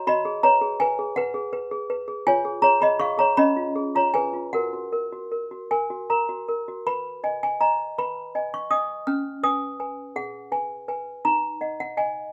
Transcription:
0.07 0.25 F#4 medium
0.07 0.42 D#5 medium
0.07 0.42 B5 loud
0.25 0.44 G#4 medium
0.43 0.63 B4 medium
0.43 0.78 C#5 medium
0.43 0.78 A#5 loud
0.61 0.81 G#4 medium
0.80 1.14 B4 medium
0.80 1.15 G#5 loud
0.99 1.18 G#4 medium
1.16 1.52 B4 medium
1.16 2.22 F#5 loud
1.34 1.54 G#4 medium
1.53 1.72 B4 medium
1.71 1.91 G#4 medium
1.90 2.09 B4 medium
2.08 2.26 G#4 medium
2.27 2.44 F4 medium
2.27 2.62 C#5 medium
2.27 2.62 G#5 loud
2.45 2.61 G#4 medium
2.62 2.79 G#4 medium
2.62 2.81 C#5 medium
2.62 2.81 A#5 loud
2.81 2.98 G#4 medium
2.81 3.00 D#5 medium
2.81 3.00 B5 loud
2.99 3.16 G#4 medium
2.99 3.18 F5 medium
2.99 3.19 C#6 loud
3.18 3.37 G#4 soft
3.18 3.37 C#5 medium
3.18 3.38 A#5 loud
3.37 3.56 C#4 medium
3.37 3.92 D#5 medium
3.37 3.92 B5 loud
3.57 3.77 F4 medium
3.76 3.96 G#4 medium
3.95 4.15 F4 medium
3.95 4.14 C#5 medium
3.95 4.15 A#5 medium
4.14 4.34 G#4 soft
4.14 4.51 B4 medium
4.14 4.51 G#5 medium
4.33 4.53 F4 soft
4.53 4.72 F#4 medium
4.53 4.91 A#4 medium
4.53 5.66 F#5 medium
4.73 4.94 F#4 soft
4.92 5.13 A#4 medium
5.12 5.33 F#4 soft
5.31 5.52 A#4 soft
5.51 5.71 F#4 soft
5.71 5.91 A#4 soft
5.71 6.08 G#5 medium
5.90 6.10 F#4 soft
6.10 6.30 A#4 soft
6.10 6.83 A#5 medium
6.29 6.49 F#4 soft
6.48 6.68 A#4 medium
6.68 6.86 F#4 soft
6.87 7.22 B4 medium
6.87 7.40 B5 medium
7.24 7.50 D#5 soft
7.24 7.42 G#5 medium
7.43 7.60 G#5 medium
7.61 7.87 D#5 soft
7.61 7.87 G#5 soft
7.61 7.96 A#5 medium
7.98 8.34 B4 medium
7.98 8.51 B5 medium
8.35 8.61 D#5 medium
8.35 8.61 G#5 soft
8.54 8.71 C#6 medium
8.71 8.97 D#5 soft
8.71 8.97 G#5 soft
8.71 9.06 D#6 loud
9.07 9.43 C#4 medium
9.07 9.42 F6 medium
9.43 9.70 B4 soft
9.43 9.70 G#5 medium
9.43 10.13 D#6 loud
9.80 10.06 B4 soft
9.80 10.06 G#5 soft
10.16 10.51 G#4 medium
10.16 10.51 F#5 medium
10.52 10.78 B4 soft
10.52 10.87 G#5 medium
10.88 11.15 B4 medium
10.88 11.15 G#5 medium
11.25 11.60 D#4 medium
11.25 11.77 A#5 medium
11.61 11.87 D#5 soft
11.61 11.79 F#5 medium
11.80 11.96 F#5 medium
11.97 12.23 D#5 soft
11.97 12.23 F#5 medium
11.97 12.32 G#5 medium

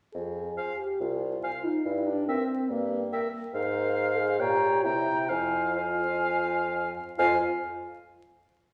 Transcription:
0.14 0.51 F2 medium
0.14 0.80 G#4 medium
0.57 0.73 C5 soft
0.57 0.73 F5 soft
0.57 0.65 G#5 soft
0.78 1.01 G4 medium
1.00 1.36 C2 soft
1.00 1.65 F4 medium
1.43 1.59 C5 soft
1.43 1.59 F5 soft
1.43 1.51 G#5 soft
1.64 1.85 D#4 medium
1.85 2.21 G2 medium
1.85 2.08 E4 medium
2.07 2.27 D4 medium
2.28 2.71 C4 medium
2.28 2.43 A#4 medium
2.28 2.44 E5 medium
2.28 2.36 G5 soft
2.69 3.05 G2 medium
2.69 3.33 A#3 medium
3.12 3.27 A#4 medium
3.12 3.28 E5 medium
3.12 3.20 G5 soft
3.54 4.42 G#2 medium
3.54 4.19 A#4 medium
3.54 4.41 C5 medium
3.54 4.41 F5 medium
3.54 4.37 F5 medium
4.17 4.41 G#4 medium
4.40 4.86 A#2 medium
4.40 4.85 G4 medium
4.40 4.86 C#5 medium
4.40 4.83 G5 medium
4.40 4.84 A#5 medium
4.84 5.29 C3 medium
4.84 5.28 E4 medium
4.84 5.29 C5 medium
4.84 5.31 G5 medium
4.84 5.29 A#5 soft
5.29 6.92 F2 medium
5.29 5.77 E4 medium
5.29 5.76 C5 medium
5.29 5.75 F5 soft
5.29 5.76 G#5 medium
5.75 6.94 F4 medium
5.75 6.93 C5 medium
5.75 6.92 F5 medium
5.75 6.93 G#5 soft
7.18 7.38 F2 medium
7.18 7.37 F4 medium
7.18 7.38 C5 medium
7.18 7.38 F5 medium
7.18 7.44 G#5 medium

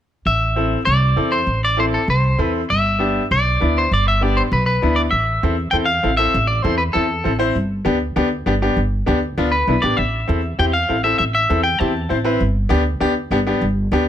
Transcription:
0.26 0.75 A1 medium
0.26 0.83 E5 medium
0.56 0.78 C4 medium
0.56 0.78 E4 medium
0.56 0.78 A4 medium
0.85 1.11 C2 medium
0.85 1.33 D5 medium
1.16 1.41 E2 medium
1.16 1.38 C4 medium
1.16 1.38 E4 medium
1.16 1.39 A4 medium
1.32 1.61 C5 medium
1.47 1.96 A1 medium
1.64 1.80 D5 medium
1.77 1.99 C4 medium
1.77 1.99 E4 medium
1.77 2.00 A4 medium
1.77 1.85 C5 medium
1.94 2.09 A4 medium
2.08 2.33 C2 medium
2.08 2.52 C5 medium
2.38 2.63 E2 medium
2.38 2.60 C4 medium
2.38 2.60 E4 medium
2.38 2.61 A4 medium
2.70 3.19 G1 medium
2.70 3.27 E5 medium
2.99 3.21 B3 medium
2.99 3.21 D4 medium
2.99 3.21 G4 medium
3.31 3.55 B1 medium
3.31 3.78 D5 medium
3.60 3.86 D2 medium
3.60 3.82 B3 medium
3.60 3.82 D4 medium
3.60 3.82 E4 medium
3.78 3.91 C5 medium
3.91 4.40 G1 medium
3.91 4.07 D5 medium
4.08 4.23 E5 medium
4.21 4.43 B3 medium
4.21 4.43 D4 medium
4.21 4.43 G4 medium
4.21 4.38 D5 medium
4.37 4.42 C5 medium
4.52 4.76 B1 loud
4.52 4.65 B4 medium
4.66 4.95 B4 medium
4.82 5.07 D2 medium
4.82 5.04 B3 medium
4.82 5.04 D4 medium
4.82 5.04 E4 medium
4.96 5.01 D5 medium
5.11 5.37 A1 medium
5.11 5.71 E5 medium
5.43 5.67 E2 medium
5.43 5.54 C4 medium
5.43 5.54 E4 medium
5.43 5.54 A4 medium
5.71 5.97 E2 medium
5.71 5.84 C4 medium
5.71 5.84 E4 medium
5.71 5.84 A4 medium
5.71 5.76 G5 medium
5.86 6.17 F5 medium
6.03 6.28 A1 medium
6.03 6.09 C4 medium
6.03 6.09 E4 medium
6.03 6.09 A4 medium
6.17 6.34 C4 medium
6.17 6.35 E4 medium
6.17 6.35 A4 medium
6.17 6.46 E5 loud
6.34 6.59 A1 medium
6.47 6.62 D5 medium
6.62 6.89 E2 medium
6.62 6.75 C4 medium
6.62 6.75 E4 medium
6.62 6.75 A4 medium
6.62 6.77 C5 medium
6.78 6.83 B4 medium
6.93 7.19 E2 medium
6.93 7.05 C4 medium
6.93 7.05 E4 medium
6.93 7.36 A4 medium
6.93 7.05 A4 medium
7.24 7.50 A1 medium
7.24 7.30 C4 medium
7.24 7.30 E4 medium
7.24 7.30 A4 medium
7.39 7.55 C4 medium
7.39 7.55 E4 medium
7.39 7.55 C5 medium
7.56 7.80 G1 medium
7.85 8.10 D2 medium
7.85 7.96 B3 medium
7.85 7.96 D4 medium
7.85 7.96 G4 medium
8.16 8.40 D2 medium
8.16 8.27 B3 medium
8.16 8.27 D4 medium
8.16 8.27 G4 medium
8.46 8.71 G1 medium
8.46 8.52 B3 medium
8.46 8.52 D4 medium
8.46 8.52 G4 medium
8.62 8.78 B3 medium
8.62 8.78 D4 medium
8.62 8.78 G4 medium
8.77 9.01 G1 medium
9.06 9.32 D2 loud
9.06 9.17 B3 medium
9.06 9.18 D4 medium
9.06 9.18 G4 medium
9.38 9.62 D2 medium
9.38 9.48 B3 medium
9.38 9.48 D4 medium
9.38 9.48 F4 medium
9.52 9.83 B4 medium
9.67 9.81 B1 medium
9.67 9.73 B3 medium
9.67 9.73 D4 medium
9.67 9.74 E4 medium
9.82 9.97 A1 medium
9.82 9.98 B3 medium
9.82 9.98 D4 medium
9.82 9.98 G4 medium
9.82 9.97 D5 medium
9.97 10.23 A1 medium
9.97 10.59 E5 medium
10.28 10.53 E2 medium
10.28 10.39 C4 medium
10.28 10.39 E4 medium
10.28 10.39 A4 medium
10.59 10.83 E2 medium
10.59 10.69 C4 medium
10.59 10.69 E4 medium
10.59 10.70 G4 medium
10.59 10.64 G5 medium
10.73 11.03 F5 medium
10.89 11.14 A1 medium
10.89 10.94 C4 medium
10.89 10.94 E4 medium
10.89 10.95 A4 medium
11.04 11.20 C4 medium
11.04 11.20 E4 medium
11.04 11.20 A4 medium
11.04 11.17 E5 medium
11.18 11.44 A1 medium
11.18 11.23 E5 medium
11.35 11.63 E5 medium
11.49 11.74 E2 medium
11.49 11.60 C4 medium
11.49 11.60 E4 medium
11.49 11.61 A4 medium
11.63 11.79 G5 medium
11.79 12.05 E2 loud
11.79 11.91 C4 medium
11.79 11.91 E4 medium
11.79 11.91 G4 medium
11.79 12.25 A5 medium
12.09 12.35 A1 medium
12.09 12.15 C4 medium
12.09 12.15 E4 medium
12.09 12.16 C5 medium
12.25 12.40 C4 medium
12.25 12.40 E4 medium
12.25 12.41 B4 medium
12.40 12.65 G1 medium
12.69 12.95 D2 loud
12.69 12.81 B3 medium
12.69 12.81 D4 medium
12.69 12.81 G4 medium
13.00 13.25 D2 medium
13.00 13.12 B3 medium
13.00 13.12 D4 medium
13.00 13.12 G4 loud
13.31 13.55 G1 medium
13.31 13.37 B3 medium
13.31 13.37 D4 medium
13.31 13.37 G4 medium
13.47 13.63 B3 medium
13.47 13.63 D4 medium
13.47 13.63 G4 medium
13.61 13.86 G1 medium
13.92 14.09 D2 medium
13.92 14.03 B3 medium
13.92 14.03 D4 medium
13.92 14.04 G4 medium

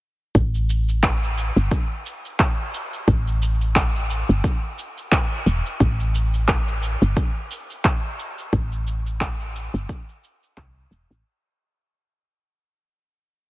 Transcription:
0.35 1.51 A1 medium
0.35 kick medium
0.35 shaker soft
0.55 shaker soft
0.70 shaker medium
0.89 shaker soft
1.03 kick loud
1.03 clap loud
1.03 shaker soft
1.23 shaker soft
1.38 shaker medium
1.56 1.69 G1 medium
1.56 shaker soft
1.71 kick loud
1.71 shaker soft
2.06 shaker medium
2.25 shaker soft
2.40 kick medium
2.40 clap medium
2.40 shaker soft
2.74 shaker medium
2.93 shaker soft
3.08 4.23 A1 medium
3.08 kick loud
3.08 shaker soft
3.27 shaker soft
3.42 shaker medium
3.61 shaker soft
3.76 kick loud
3.76 clap loud
3.76 shaker soft
3.95 shaker soft
4.10 shaker medium
4.29 4.41 G1 medium
4.29 shaker soft
4.44 kick loud
4.44 shaker soft
4.79 shaker medium
4.98 shaker soft
5.12 kick loud
5.12 clap medium
5.12 shaker soft
5.46 5.62 E1 medium
5.46 shaker medium
5.66 shaker soft
5.80 6.96 A1 loud
5.80 kick loud
5.80 shaker soft
6.00 shaker soft
6.15 shaker medium
6.34 shaker soft
6.48 kick loud
6.48 clap medium
6.48 shaker soft
6.68 shaker soft
6.83 shaker medium
7.02 7.14 G1 medium
7.02 shaker soft
7.17 kick loud
7.17 shaker soft
7.51 shaker medium
7.70 shaker soft
7.85 kick loud
7.85 clap medium
7.85 shaker soft
8.19 shaker medium
8.38 shaker soft
8.53 9.69 A1 medium
8.53 kick loud
8.53 shaker soft
8.72 shaker soft
8.87 shaker medium
9.07 shaker soft
9.21 kick loud
9.21 clap loud
9.21 shaker soft
9.40 shaker soft
9.56 shaker medium
9.74 9.86 G1 medium
9.74 shaker soft
9.89 kick loud
9.89 shaker soft
10.09 shaker soft
10.24 shaker medium
10.43 shaker soft
10.57 10.86 C2 medium
10.57 kick loud
10.57 clap medium
10.57 shaker soft
10.91 11.07 E1 medium
10.91 shaker medium
11.11 11.23 A1 loud
11.11 shaker soft

